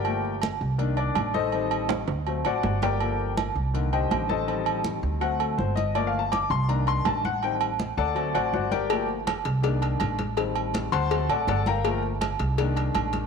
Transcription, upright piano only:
X:1
M:4/4
L:1/8
Q:1/4=163
K:Gm
V:1 name="Upright piano"
[GBdg]2 z3 [Dd]2 [EAce]- | [EAce]2 z3 [^Fcd^f]2 [GBdg]- | [GBdg]2 z3 [Gceg]2 [Acea]- | [Acea]2 z2 ^f A c e |
(3d f a d' c' b c' a ^f | g z2 [Ad^fa]2 [^Fcdf] [Fcdf] [GBdg]- | [GBdg] z6 z | z3 [c^fac']2 [Adfa] [Adfa] [B=fgb]- |
[Bfgb] z6 z |]
V:2 name="Upright piano"
[F,A,B,] z3 [E,B,D]4 | [E,G,C]3 z [^F,A,C] z3 | [F,B,A]3 z [D,E,B,]4 | [E,G,C]4 [^F,A,C]3 z |
[F,A,B,] z3 [E,B,D]3 z | [E,G,C] z3 [^F,A,C]3 z | [F,A,B,] z3 [E,B,D]3 z | [E,G,C]4 [^F,A,C] z3 |
[F,A,B,] z3 [E,B,D]4 |]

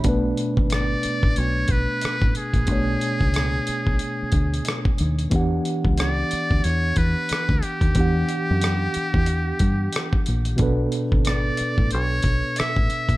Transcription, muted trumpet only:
X:1
M:4/4
L:1/8
Q:"Swing 16ths" 1/4=91
K:Edor
V:1 name="Muted trumpet"
z2 d2 c B2 ^G- | ^G6- G z | z2 d2 c B2 G- | G6- G z |
z2 d2 c2 e2 |]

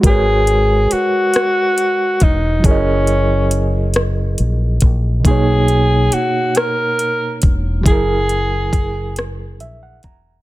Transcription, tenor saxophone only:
X:1
M:6/8
L:1/8
Q:3/8=46
K:G#m
V:1 name="Tenor saxophone"
G2 F3 D | C3 z3 | G2 F A2 z | G4 z2 |]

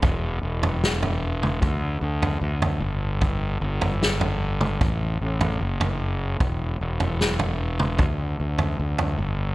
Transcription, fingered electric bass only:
X:1
M:4/4
L:1/8
Q:1/4=75
K:F#phr
V:1 name="Fingered electric bass" clef=bass
E,,, E,,,3 D,, D,, D,, G,,,- | G,,, G,,,3 A,,, A,,, F,,,2 | E,,, E,,,3 D,, D,, D,, G,,, |]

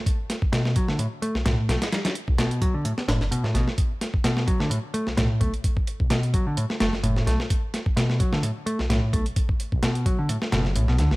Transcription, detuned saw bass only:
X:1
M:4/4
L:1/16
Q:"Swing 16ths" 1/4=129
K:Bm
V:1 name="Detuned saw bass" clef=bass
z8 z3 B,,, B,,, z B,,, z | z3 B,,, z6 F,,, F,,, z2 A,,, z | z8 z3 B,,, B,,, z B,,, z | z3 B,,, z6 F,,, F,,, F,,, z B,,, z |
z8 z3 B,,, B,,, z B,,, z | z3 B,,, z6 F,,,2 B,,,2 D,, B,,, |]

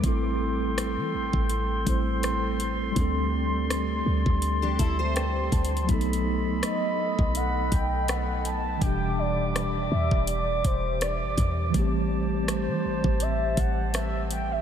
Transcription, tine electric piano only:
X:1
M:4/4
L:1/8
Q:"Swing 16ths" 1/4=82
K:Ador
V:1 name="Tine electric piano"
z8 | z6 g a | z8 | z8 |
z8 |]
V:2 name="Tine electric piano"
[G,A,CEA]4- [G,A,CEA] [G,A,CEc]3 | [G,A,CDA]8 | [F,A,B,^DA]8 | [B,,E,G,DG]8 |
[E,G,A,B,CG]8 |]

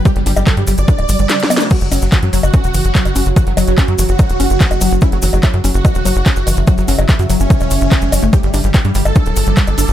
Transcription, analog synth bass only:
X:1
M:4/4
L:1/16
Q:1/4=145
K:Glyd
V:1 name="Analog synth bass" clef=bass
z G,,, G,,, G,,, z G,, G,,, G,,, z D,,, G,,, G,,, z4 | z F,,, F,,, F,,, z F,, F,,, F,,, z E,,, F,,, F,,, z F,,, F,,, F,,, | z F,,, F,,, F,,, z F,, F,,, F,,, z E,,, F,,, F,,, z F,,, F,,, F,,, | z F,,, F,,, F,,, z F,, F,,, F,,, z E,,, F,,, F,,, z F,,, F,,, F,,, |
z F,,, F,,, F,,, z F,, F,,, F,,, z E,,, F,,, F,,, z F,,, F,,, F,,, | z G,,, G,,, G,,, z G,, G,,, G,,, z D,,, G,,, G,,, z G,,, G,,, G,,, |]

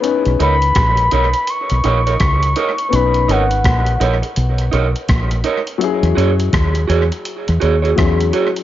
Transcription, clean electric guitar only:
X:1
M:4/4
L:1/16
Q:"Swing 16ths" 1/4=83
K:B
V:1 name="Clean electric guitar"
z2 [DAc] z3 [DAc] z3 [DAc] [DAc] z2 [DAc] z | z2 [DAc] z3 [DAc] z3 [DAc] z3 [DAc] z | z2 [FGc] z3 [FGc] z3 [FGc] [FGc] z2 [FGc] z |]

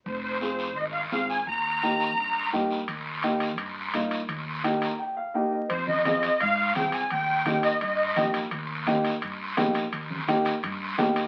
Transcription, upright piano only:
X:1
M:4/4
L:1/8
Q:1/4=170
K:Ebmix
V:1 name="Upright piano"
z2 [CFA] z3 [CFA] z | z2 [B,EG] z3 [B,EG] z | z2 [B,EG] z3 [B,EF] z | z2 [B,EG] b g f [B,EGe] e |
z2 [CFA] z3 [CFA] z | z2 [B,EG] z3 [B,EG] z | z2 [B,EG] z3 [B,EG] z | z2 [B,EG] z3 [B,EG] z |]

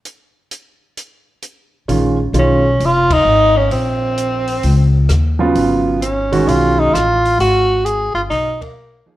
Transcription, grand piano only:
X:1
M:4/4
L:1/8
Q:"Swing" 1/4=131
K:Bbphr
V:1 name="Grand piano"
z8 | [E,A,DF] z [E,A,DF] z4 z | z6 z [D,G,CF]- | [D,G,CF]2 z [E,A,DG]3 z2 |
z6 z [F,B,EA] |]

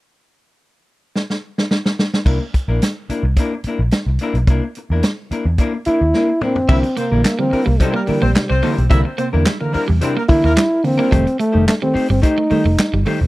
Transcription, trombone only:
X:1
M:4/4
L:1/16
Q:1/4=108
K:Cmix
V:1 name="Trombone"
z16 | z16 | z8 z2 E4 C2- | C2 B,2 B, C2 B, G,6 z2 |
z8 z2 E4 C2- | C2 A,2 A, C2 C _E6 z2 |]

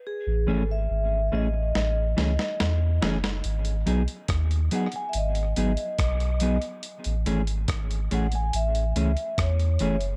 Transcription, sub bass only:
X:1
M:4/4
L:1/16
Q:1/4=71
K:Alyd
V:1 name="Sub bass" clef=bass
z A,,, G,,,2 G,,,2 A,,,2 A,,,2 C,, z E,,2 F,,,2 | G,,,2 B,,, z D,,2 z2 G,,,2 G,,, z B,,,3 z | z A,,, G,,,2 G,,,2 A,,,2 A,,,2 C,, z E,,2 F,,,2 |]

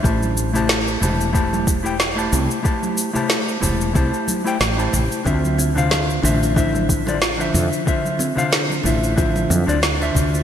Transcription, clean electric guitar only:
X:1
M:4/4
L:1/16
Q:"Swing 16ths" 1/4=92
K:Dm
V:1 name="Clean electric guitar"
[A,EGca]3 [A,EGca]3 [A,EGca]2 [A,EGca]3 [A,EGcg] z [A,EGca]3 | [A,EGca]3 [A,EGca]3 [A,EGca]2 [A,EGca]3 [A,EGcg] z [A,EGca]3 | [D,DFce]3 [D,DFcf]3 [D,DFce]2 [D,F,Dce]3 [D,DFcd] z [D,F,Dce]3 | [D,DFce]3 [D,DFcf]3 [D,DFce]2 [D,F,Dce]3 [D,DFcd] z [D,DFce]3 |]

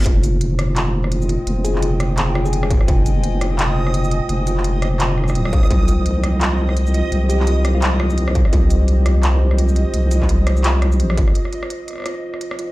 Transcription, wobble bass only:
X:1
M:4/4
L:1/8
Q:"Swing 16ths" 1/4=170
K:Fm
V:1 name="Wobble bass" clef=bass
F,,,6- F,,, z | F,,,6- F,,, z | F,,,6- F,,, z | F,,,6 E,,, C,, |
C,,6- C,, z | C,,6- C,, z | C,,6- C,, z | C,,6 B,,, G,,, |
z8 |]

